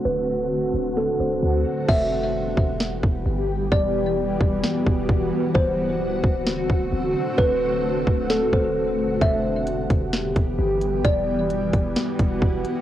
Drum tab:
CC |--------|x-------|--------|--------|
HH |--------|--------|--------|--------|
SD |----o---|----o---|----o---|----o---|
BD |--------|o--o-o--|o--o-oo-|o--o-o--|

CC |--------|--------|--------|
HH |--------|x-xxxx-x|x-xxxx-x|
SD |----o---|----o---|----o---|
BD |o--o-o--|o--o-o--|o--o-oo-|